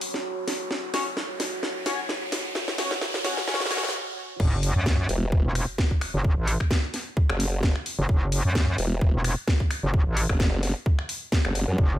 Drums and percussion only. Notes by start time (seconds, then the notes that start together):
0.01 open hi-hat
0.14 snare
0.48 snare, open hi-hat
0.71 snare
0.94 snare, open hi-hat
1.17 snare
1.40 snare, open hi-hat
1.63 snare
1.86 snare, open hi-hat
2.09 snare
2.32 snare, open hi-hat
2.55 snare
2.68 snare
2.78 snare, open hi-hat
2.91 snare
3.01 snare
3.14 snare
3.25 snare, open hi-hat
3.37 snare
3.48 snare
3.54 snare
3.60 snare
3.65 snare
3.71 snare, open hi-hat
3.77 snare
3.83 snare
3.89 snare
4.40 kick, crash
4.63 open hi-hat
4.86 kick, snare
5.09 open hi-hat
5.32 kick
5.55 finger snap, open hi-hat
5.78 kick, snare
5.91 kick
6.01 finger snap, open hi-hat
6.24 kick
6.48 open hi-hat
6.60 finger snap, kick
6.71 kick, snare
6.94 snare, open hi-hat
7.17 kick
7.30 finger snap
7.40 open hi-hat
7.63 kick, snare
7.76 finger snap
7.86 open hi-hat
8.09 kick
8.32 open hi-hat
8.55 kick, snare
8.78 open hi-hat
9.01 kick
9.24 finger snap, open hi-hat
9.48 kick, snare
9.60 kick
9.71 finger snap, open hi-hat
9.94 kick
10.17 open hi-hat
10.29 finger snap, kick
10.40 kick, snare
10.63 snare, open hi-hat
10.86 kick
10.99 finger snap
11.09 open hi-hat
11.32 kick, snare
11.45 finger snap
11.55 open hi-hat
11.78 kick